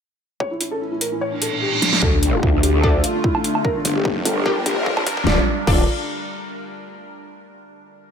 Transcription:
0.40 0.50 C#5 medium
0.40 kick loud
0.51 0.59 E4 medium
0.61 0.70 E4 medium
0.61 closed hi-hat medium
0.71 0.80 A4 medium
0.81 0.90 E4 medium
0.92 1.00 E4 medium
1.01 1.10 A#4 medium
1.01 closed hi-hat medium
1.12 1.20 E4 medium
1.21 1.31 C#5 medium
1.21 reverse cymbal medium
1.32 1.40 D4 medium
1.42 1.51 A4 medium
1.42 closed hi-hat medium
1.52 1.61 D4 medium
1.62 1.71 G4 medium
1.73 1.81 D4 medium
1.82 1.91 D4 medium
1.82 snare medium
1.82 closed hi-hat medium
1.93 2.01 D4 medium
1.93 snare medium
2.02 2.41 D2 medium
2.02 3.63 D3 medium
2.02 3.63 A3 medium
2.02 3.63 F4 medium
2.02 2.12 A4 medium
2.02 kick medium
2.02 riser medium
2.13 2.21 D4 medium
2.23 2.32 D4 medium
2.23 closed hi-hat medium
2.33 2.42 F4 medium
2.43 2.62 D2 medium
2.43 2.52 D4 medium
2.43 kick loud
2.54 2.62 D4 medium
2.63 3.02 D2 medium
2.63 2.73 G4 medium
2.63 closed hi-hat medium
2.74 2.82 D4 medium
2.83 2.95 D4 medium
2.83 2.93 A4 medium
2.83 2.95 A4 medium
2.83 2.95 D5 medium
2.83 kick loud
2.94 3.03 D4 medium
3.04 3.13 F4 medium
3.04 closed hi-hat medium
3.15 3.23 D4 medium
3.24 3.33 E4 medium
3.24 kick loud
3.35 3.43 D4 medium
3.35 low woodblock soft
3.44 3.54 D4 medium
3.44 closed hi-hat medium
3.55 3.63 D4 medium
3.55 low woodblock soft
3.65 5.25 G3 medium
3.65 5.25 D4 medium
3.65 3.74 A#4 loud
3.65 5.25 A#4 medium
3.65 kick loud
3.75 3.83 D4 medium
3.85 4.24 G1 loud
3.85 3.94 D4 medium
3.85 closed hi-hat medium
3.96 4.04 G4 medium
4.05 4.14 D4 medium
4.05 kick loud
4.16 4.24 D4 medium
4.25 4.64 G1 medium
4.25 4.35 A4 medium
4.25 closed hi-hat medium
4.36 4.44 D4 medium
4.46 4.57 G3 medium
4.46 4.57 D4 medium
4.46 4.57 G4 medium
4.46 4.55 A#4 medium
4.46 kick loud
4.56 4.65 D4 medium
4.66 5.05 A#1 loud
4.66 4.75 G4 medium
4.66 kick loud
4.66 closed hi-hat medium
4.77 4.85 D4 medium
4.86 4.96 F4 loud
4.86 kick loud
4.97 5.05 D4 medium
4.97 kick medium
4.97 low woodblock medium
5.07 5.25 G2 loud
5.07 5.16 D4 medium
5.07 kick loud
5.07 closed hi-hat medium
5.17 5.26 D4 medium
5.17 kick loud
5.27 5.39 D1 loud
5.27 5.39 D4 medium
5.27 5.39 F4 medium
5.27 5.39 A4 medium
5.27 5.39 D5 medium
5.27 kick loud
5.27 snare medium
5.67 5.86 D1 loud
5.67 5.83 D4 medium
5.67 5.83 F4 medium
5.67 5.83 A4 medium
5.67 5.83 D5 medium
5.67 kick loud
5.67 crash medium

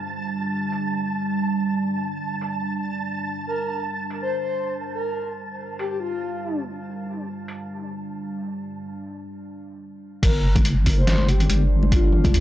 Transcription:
0.00 8.54 G3 medium
0.00 8.54 D4 medium
0.00 8.54 A5 medium
0.72 open hi-hat medium
2.41 open hi-hat medium
3.47 3.80 A#4 medium
4.10 open hi-hat medium
4.22 4.43 C5 medium
4.43 4.74 C5 medium
4.95 5.27 A#4 medium
5.79 5.86 G4 medium
5.79 open hi-hat medium
5.91 5.97 G4 medium
6.00 6.60 F4 medium
7.48 open hi-hat medium
10.23 11.48 G1 medium
10.23 12.40 G3 medium
10.23 12.40 D4 medium
10.23 10.56 A#4 medium
10.23 kick loud
10.23 closed hi-hat medium
10.23 crash loud
10.56 kick loud
10.56 closed hi-hat medium
10.56 high conga medium
10.65 closed hi-hat medium
10.86 kick medium
10.86 open hi-hat loud
10.98 11.27 C5 medium
11.07 snare loud
11.07 closed hi-hat medium
11.18 high conga medium
11.29 11.61 G4 loud
11.29 closed hi-hat medium
11.40 closed hi-hat medium
11.50 12.33 G1 loud
11.50 closed hi-hat medium
11.50 high conga medium
11.83 high conga medium
11.92 12.40 F4 loud
11.92 kick loud
11.92 closed hi-hat medium
12.13 low conga medium
12.24 kick loud
12.24 closed hi-hat medium
12.24 high conga loud
12.34 12.40 D2 loud
12.34 closed hi-hat medium

